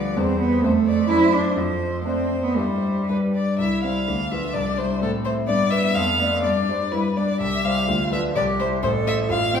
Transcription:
Already playing: D2 F3 G3 D4 B4 D5
0.16 E2 G3 C4 C5
0.40 B3
0.62 F2 A3 C4 C5
0.86 D5
1.08 F#2 A3 D4 E4 C5
1.33 D4
1.56 F2 F3 C5
2.05 A3 C4 D4 C5
2.44 B3
2.56 G2 G3 E4 C5
3.08 G2 G3 D4 B4
3.35 D5
3.58 C2 E4 E5
3.83 G3 C4 C5 F5
4.07 D2 D4
4.31 F3 F4 B4 E5
4.54 C2 D5
4.78 G3 E4 C5
5.00 A2 C4 A4
5.25 A3 E4 C5
5.47 G2 B3 D5
5.71 B3 E4 B4 E5
5.95 F2 F5
6.19 A3 D4 D5
6.43 G2 D4 D5
6.69 G3 D4 C5
6.92 G2 E4 B4
7.16 G3 D4 D5
7.40 C2 G4 E5
7.64 G3 E4 C5 F5
7.88 D2 F4
8.11 F3 D4 B4 E5
8.35 C2 G4 D5
8.59 G3 E4 C5
8.83 A1 A4 C5
9.06 A3 E4 C5 E5
9.30 A1 F4 F5
9.54 C4 F4 C5 G5

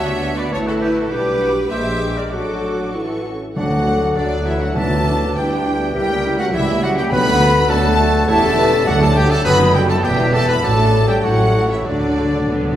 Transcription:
Already playing: D2 F#3 A3 B3 D4 F#4 C#5 E5 F#5 A5
0.37 B4 D5
0.52 A1 E3 A3 E4 A4 C#5 A5
0.67 F#4 A4
0.81 G4 B4
0.96 F#4 A4
1.10 B1 G3 D4 G4 B4 D6
1.41 F#4
1.71 A#1 G#3 A#3 D4 G4 G#4 C5 E5 D6
2.17 A#4 D5
2.32 A1 F#3 D4 F#4 A4 D6
2.94 E3 E4 A4 C#6
3.25 C#4
3.55 D2 D3 F#3 A3 D4 F#4 D5 F#5
3.71 F#3 F#4
3.87 A3 D4 A4
4.01 F#3 F#4
4.16 D2 D3 F#3 A3 D4 A4 D5 F#5
4.32 F#3 F#4
4.45 E3 A3 D4 E4 E5
4.61 F#3 F#4 F#5
4.74 D2 D3 F#3 A3 D4 E4 A4 B4 E5 A5
4.93 B3 D4
5.07 D4 E4 D5
5.22 B3 D4
5.36 D2 E3 G3 D4 E4 G4 B4 G5
5.52 B3 D4
5.67 D4 E4
5.82 B3 D4
5.94 C#2 G3 E4 G4 A#4 E5 G5
6.11 A#3 C#4
6.25 G3 E4
6.38 F#3 A#3 C#4 F#4 F#5
6.53 C#2 E3 G3 E4 G4 E5
6.69 A#3 C#4
6.82 F#3 G3 E4 F#4 F#5
6.96 G3 A#3 C#4 G4 G5
7.10 D2 D3 F#3 B3 F#4 A4 B4 F#5 B5
7.28 A3 A4
7.42 F#3 F#4 F#5
7.57 A3 A4
7.70 D2 F#3 A3 F#4 A4 D5 A5
7.85 A3 A4
7.99 F#3 A3 F#4
8.13 A3 A4
8.27 E1 E2 G3 A3 E4 G4 A4 C#5 E5 A5
8.43 C#4 A4
8.57 E4 G4 B4
8.72 C#4 A4
8.86 D2 F#3 F#4 A4 D5 F#5
9.01 A3 D4 F#4 A4 A5
9.16 G3 F#4 G4 A4 G5
9.30 A3 D4 F#4 A4 A5
9.45 F#1 F#2 F#3 B3 F#4 A4 B4 C#5 D#5 B5
9.60 D#4 B4
9.73 G3 F#4 G4 A4 G5
9.89 A3 D#4 A4 B4 A5
10.03 E1 E2 G3 B3 G4 B4 E5 G5
10.18 E4 B4
10.32 A3 B3 G4 A4 A5
10.48 B3 E4 B4 B5
10.62 A1 A2 F#3 A3 F#4 A4 D5 A5
10.78 D4 A4
10.93 A3 F#4
11.08 G3 D4 G4 A4 G5
11.22 A1 A2 F#3 A3 E4 F#4 A4 C#5 F#5
11.39 C#4 G4
11.54 A3 E4
11.69 E3 C#4 E4 G4 E5
11.84 D2 D3 F#3 A3 D4 F#4 A4 D5
11.94 D3
12.01 D3 D4 A4
12.17 D3 A3 F#4
12.25 D3
12.32 D3 D4 A4
12.40 D3
12.47 D2 D3 B3
12.56 D3
12.64 D3
12.71 D3

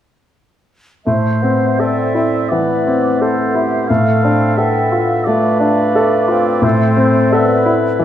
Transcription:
1.05 A2 A3 C5 E5
1.43 B3 C4
1.78 C4 A4 D5 E5
2.15 C4 E4
2.48 E3 B3 B4 D5 E5
2.87 C4
3.21 A4 C5 E5
3.55 E4 G4
3.88 A2 A3 A4 F5
4.24 C4 D4
4.56 B3 A4 E5 G5
4.91 F4 F5
5.25 A3 B4 D5
5.60 D4 D5
5.95 A3 A4
6.28 C4 F4
6.61 A2 A4 C5 E5
6.97 C4 A4
7.30 B3 A4 B4 D5 E5
7.66 E4
7.99 E3 D5 E5

